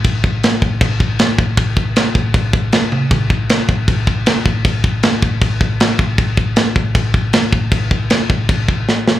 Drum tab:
CC |x-x-x-x-|x-x-x-x-|x-x-x-x-|x-x-x-x-|
SD |--o---o-|--o---o-|--o---o-|--o---o-|
T1 |--------|-------o|--------|--------|
BD |oo-ooo-o|oo-ooo--|oo-ooo-o|oo-ooo-o|

CC |x-x-x-x-|x-x-x---|
SD |--o---o-|--o---oo|
T1 |--------|--------|
BD |oo-ooo-o|oo-ooo--|